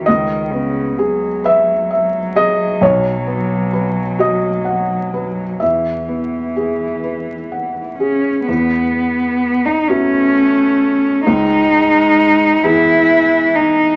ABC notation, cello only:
X:1
M:6/8
L:1/16
Q:3/8=43
K:E
V:1 name="Cello"
D,2 C,2 F,8- | F,12 | E,8- E,2 C2 | B,4- B, D C6 |
D6 E4 D2 |]